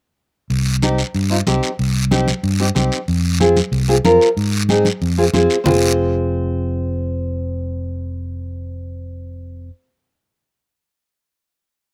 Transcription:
0.50 1.02 C2 medium
0.50 long guiro medium
0.82 0.99 C4 medium
0.82 1.00 D#4 medium
0.82 1.00 G4 medium
0.82 high conga medium
0.82 short guiro medium
0.98 short guiro medium
1.15 1.40 G2 medium
1.15 long guiro medium
1.30 1.36 C4 medium
1.30 1.36 D#4 medium
1.30 1.37 F4 medium
1.46 1.60 C2 medium
1.46 1.69 C4 medium
1.46 1.70 D#4 medium
1.46 1.70 G4 medium
1.46 high conga medium
1.46 short guiro medium
1.63 short guiro medium
1.79 2.31 C2 medium
1.79 long guiro medium
2.11 2.28 C4 medium
2.11 2.28 D#4 medium
2.11 2.29 G4 medium
2.11 high conga medium
2.11 short guiro medium
2.28 high conga medium
2.28 short guiro medium
2.43 2.69 G2 medium
2.43 long guiro medium
2.60 2.65 C4 medium
2.60 2.66 D#4 medium
2.60 2.66 G4 medium
2.75 2.89 C2 medium
2.75 2.98 C4 medium
2.75 2.98 D#4 medium
2.75 2.98 G4 medium
2.75 high conga medium
2.75 short guiro medium
2.92 short guiro medium
3.08 3.60 F2 medium
3.08 long guiro medium
3.40 3.57 C4 medium
3.40 3.57 F4 medium
3.40 3.57 G#4 medium
3.40 high conga medium
3.40 short guiro medium
3.56 high conga medium
3.56 short guiro medium
3.72 3.98 C2 medium
3.72 long guiro medium
3.88 3.94 C4 medium
3.88 3.94 F4 medium
3.88 3.94 G#4 medium
4.04 4.18 F2 medium
4.04 4.27 C4 medium
4.04 4.27 F4 medium
4.04 4.28 A#4 medium
4.04 high conga medium
4.04 short guiro medium
4.21 short guiro medium
4.37 4.88 G#2 medium
4.37 long guiro medium
4.69 4.86 C4 medium
4.69 4.86 D#4 medium
4.69 4.86 G#4 medium
4.69 high conga medium
4.69 short guiro medium
4.85 high conga medium
4.85 short guiro medium
5.02 5.27 F2 medium
5.02 long guiro medium
5.18 5.23 C4 medium
5.18 5.24 F4 medium
5.18 5.24 G#4 medium
5.34 5.47 F2 medium
5.34 5.56 C4 medium
5.34 5.56 F4 medium
5.34 5.57 G#4 medium
5.34 5.64 C5 medium
5.34 high conga medium
5.34 short guiro medium
5.50 short guiro medium
5.64 9.69 F1 medium
5.64 9.68 C4 medium
5.64 9.69 F4 medium
5.64 low conga loud
5.64 long guiro medium
5.68 9.70 G#4 medium

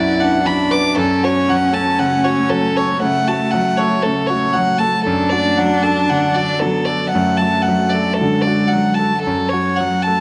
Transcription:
0.00 0.97 F#2 soft
0.00 0.45 F#3 soft
0.00 0.97 B3 medium
0.00 0.20 D4 soft
0.00 0.44 E4 medium
0.00 0.93 F#4 medium
0.00 0.71 B4 soft
0.00 0.22 D5 soft
0.00 0.97 D5 medium
0.20 0.61 D4 soft
0.20 0.48 F#5 soft
0.45 0.86 F#3 soft
0.45 0.98 D4 medium
0.45 0.73 B5 soft
0.71 0.97 B4 soft
0.71 0.97 D6 soft
0.96 2.98 F#2 medium
0.96 5.07 A3 medium
0.96 3.04 C#4 medium
0.96 5.03 F#4 medium
0.96 1.26 A4 medium
0.96 5.06 F#5 medium
1.23 1.64 F#4 soft
1.23 1.52 C#5 medium
1.48 1.89 F#3 soft
1.48 1.75 F#5 medium
1.73 2.14 A4 soft
1.73 2.01 A5 soft
1.99 2.40 C#3 soft
1.99 2.26 F#5 medium
2.24 2.66 F#4 soft
2.24 2.51 C#5 soft
2.50 2.91 F#3 soft
2.50 2.79 A4 soft
2.75 3.17 A4 soft
2.75 3.02 C#5 soft
3.02 3.43 C#3 soft
3.02 4.56 A3 medium
3.02 3.29 F#5 medium
3.28 3.69 F#4 soft
3.28 3.53 A5 soft
3.51 3.94 F#3 soft
3.51 3.79 F#5 soft
3.78 4.20 A4 soft
3.78 4.04 C#5 soft
4.03 4.46 C#3 soft
4.03 4.28 A4 soft
4.27 4.71 F#4 soft
4.27 4.55 C#5 soft
4.53 4.97 F#3 soft
4.53 4.80 F#5 soft
4.79 5.07 A4 soft
4.79 5.05 A5 soft
5.05 7.10 F#2 medium
5.05 9.21 F#3 medium
5.05 6.63 D4 medium
5.05 9.21 F#4 medium
5.05 5.32 A4 soft
5.05 9.21 F#5 medium
5.30 5.74 F#4 soft
5.30 5.59 D5 medium
5.58 6.00 F#3 soft
5.58 5.85 F#5 soft
5.83 6.25 A4 soft
5.83 6.12 A5 soft
6.10 6.52 D3 soft
6.10 6.36 F#5 soft
6.35 6.77 F#4 soft
6.35 6.62 D5 soft
6.60 7.04 F#3 soft
6.60 7.15 B3 medium
6.60 6.87 A4 soft
6.85 7.30 A4 soft
6.85 7.10 D5 soft
7.11 8.20 A3 medium
7.11 7.39 F#5 soft
7.15 9.21 F#2 soft
7.37 7.64 A5 soft
7.42 7.83 F#4 soft
7.62 7.91 F#5 soft
7.68 8.09 F#3 soft
7.90 8.15 D5 soft
7.94 8.36 A4 soft
8.14 8.43 A4 soft
8.19 8.62 D3 soft
8.19 9.24 G#3 medium
8.41 8.69 D5 soft
8.47 8.89 F#4 soft
8.68 8.96 F#5 soft
8.73 9.15 F#3 soft
8.95 9.21 A5 soft
8.99 9.26 A4 soft
9.22 10.20 F#3 medium
9.22 10.20 A3 medium
9.22 10.20 F#4 medium
9.22 9.50 A4 soft
9.22 10.20 F#5 medium
9.27 10.20 F#2 soft
9.49 9.78 C#5 soft
9.53 9.95 F#4 soft
9.77 10.20 F#3 soft
9.77 10.04 F#5 soft
10.03 10.20 A5 soft
10.07 10.20 A4 soft

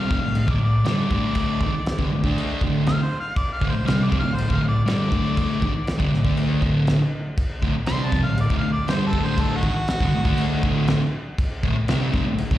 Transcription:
0.00 0.10 C4 loud
0.00 0.53 F5 loud
0.08 0.21 F2 medium
0.08 0.21 C3 loud
0.08 kick loud
0.12 snare soft
0.22 0.43 D2 medium
0.22 0.43 A2 medium
0.35 crash medium
0.47 0.59 D2 loud
0.47 0.59 A2 loud
0.47 kick loud
0.52 0.62 D5 medium
0.60 0.80 D2 medium
0.60 0.81 A2 medium
0.64 0.87 D5 medium
0.85 1.09 G2 medium
0.85 1.10 D3 loud
0.85 1.11 G3 loud
0.85 2.33 D5 loud
0.85 snare loud
0.85 crash medium
1.10 1.60 D2 loud
1.10 1.60 A2 medium
1.10 1.61 D3 loud
1.10 kick loud
1.35 kick loud
1.35 crash medium
1.61 1.73 G#2 loud
1.61 1.74 D#3 loud
1.61 kick loud
1.75 muted distorted electric guitar stroke medium
1.86 snare loud
1.86 crash medium
1.99 2.10 G2 medium
1.99 2.11 D3 loud
1.99 kick loud
2.13 2.24 D2 medium
2.13 2.24 A2 medium
2.24 2.61 D3 medium
2.24 2.61 A3 loud
2.24 2.62 D4 loud
2.24 kick loud
2.38 crash medium
2.61 2.99 D2 medium
2.61 3.00 A2 medium
2.61 3.00 D3 medium
2.61 kick loud
2.86 3.05 F5 loud
2.86 snare loud
2.86 crash medium
3.03 3.19 C5 loud
3.20 3.36 F5 loud
3.36 3.52 D5 loud
3.36 kick loud
3.36 crash medium
3.53 3.72 F5 medium
3.61 3.73 D2 loud
3.61 3.74 A2 loud
3.61 kick loud
3.70 3.86 C5 medium
3.75 muted distorted electric guitar stroke medium
3.85 4.09 C3 medium
3.85 4.10 G3 loud
3.85 4.11 C4 loud
3.85 4.05 F5 medium
3.85 snare loud
3.85 crash medium
4.03 4.19 D5 medium
4.10 4.22 F2 loud
4.10 4.23 C3 loud
4.10 kick loud
4.19 4.37 F5 loud
4.24 4.44 D2 medium
4.24 4.44 A2 medium
4.35 4.51 C5 medium
4.35 crash medium
4.49 4.60 D2 loud
4.49 4.61 A2 loud
4.49 4.68 F5 medium
4.49 kick loud
4.62 4.82 D2 medium
4.62 4.82 A2 medium
4.68 4.84 D5 loud
4.85 5.09 G2 loud
4.85 5.10 D3 loud
4.85 5.11 G3 loud
4.85 6.32 D5 loud
4.85 snare loud
4.85 crash medium
5.09 5.60 D2 medium
5.09 5.60 A2 loud
5.09 5.61 D3 loud
5.09 kick loud
5.37 kick loud
5.37 crash medium
5.60 5.73 G#2 loud
5.60 5.73 D#3 loud
5.60 kick loud
5.74 muted distorted electric guitar stroke medium
5.87 snare loud
5.87 crash medium
5.98 6.10 G2 medium
5.98 6.11 D3 medium
5.98 kick loud
6.12 6.24 D2 medium
6.12 6.24 A2 medium
6.12 snare soft
6.25 6.61 D3 medium
6.25 6.62 A3 loud
6.25 6.62 D4 loud
6.25 kick loud
6.37 crash medium
6.62 6.99 D2 medium
6.62 6.99 A2 medium
6.62 7.00 D3 loud
6.62 kick medium
6.87 snare loud
6.87 crash medium
7.38 kick loud
7.38 crash medium
7.62 7.74 D2 loud
7.62 7.74 A2 loud
7.62 kick loud
7.76 muted distorted electric guitar stroke medium
7.86 8.11 C3 loud
7.86 8.12 G3 medium
7.86 8.12 C4 loud
7.86 8.07 C6 loud
7.86 snare loud
7.86 crash medium
8.06 8.21 A5 loud
8.12 8.24 F2 loud
8.12 8.24 C3 loud
8.12 kick loud
8.12 snare soft
8.23 8.45 D2 medium
8.23 8.45 A2 medium
8.23 8.38 F5 loud
8.38 8.55 D5 medium
8.38 crash medium
8.50 8.61 D2 loud
8.50 8.61 A2 loud
8.50 kick loud
8.58 8.72 F5 medium
8.62 8.82 D2 medium
8.62 8.82 A2 medium
8.72 8.88 D5 medium
8.87 9.10 G2 medium
8.87 9.12 D3 loud
8.87 9.12 G3 loud
8.87 9.04 C5 medium
8.87 snare loud
8.87 crash medium
9.07 9.61 D2 medium
9.07 9.26 A4 medium
9.13 9.62 A2 loud
9.13 9.62 D3 loud
9.13 kick medium
9.24 9.42 C5 medium
9.38 9.58 A4 loud
9.38 kick loud
9.38 crash medium
9.56 11.02 F#4 loud
9.62 9.74 G#2 loud
9.62 9.75 D#3 loud
9.62 kick loud
9.77 muted distorted electric guitar stroke medium
9.88 snare loud
9.88 crash medium
10.00 10.13 G2 medium
10.00 10.14 D3 medium
10.00 kick loud
10.15 10.27 D2 medium
10.15 10.24 A2 medium
10.25 10.62 D3 medium
10.25 10.62 A3 loud
10.25 10.63 D4 loud
10.25 kick loud
10.38 crash medium
10.63 11.00 D2 medium
10.63 11.01 A2 medium
10.63 11.01 D3 loud
10.63 kick loud
10.88 snare loud
10.88 crash medium
11.38 kick loud
11.38 crash medium
11.63 11.74 D2 medium
11.63 11.75 A2 loud
11.63 kick loud
11.75 muted distorted electric guitar stroke medium
11.88 12.12 C3 loud
11.88 12.13 G3 loud
11.88 12.13 C4 loud
11.88 snare loud
11.88 crash medium
12.12 12.25 F2 loud
12.12 12.25 C3 loud
12.12 kick loud
12.12 snare soft
12.28 12.47 D2 medium
12.28 12.47 A2 medium
12.38 crash medium
12.51 12.58 D2 loud
12.51 12.58 A2 loud
12.51 kick loud

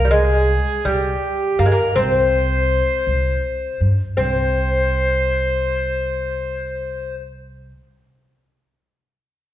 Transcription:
0.00 0.58 C2 loud
0.00 0.14 A#4 medium
0.05 0.10 G3 medium
0.11 0.85 G#3 medium
0.11 0.88 G#4 medium
0.85 1.13 C2 medium
0.85 1.61 G3 medium
0.85 1.61 G4 medium
1.59 1.73 G2 medium
1.59 1.66 A#3 medium
1.59 1.97 A#4 medium
1.66 1.73 G#3 medium
1.72 1.95 A#3 medium
1.95 2.80 C2 loud
1.95 3.76 C4 medium
1.95 3.81 C5 medium
3.07 3.35 C2 medium
3.81 3.95 G2 medium
4.17 7.72 C2 medium
4.17 7.71 C4 medium
4.17 7.15 C5 medium

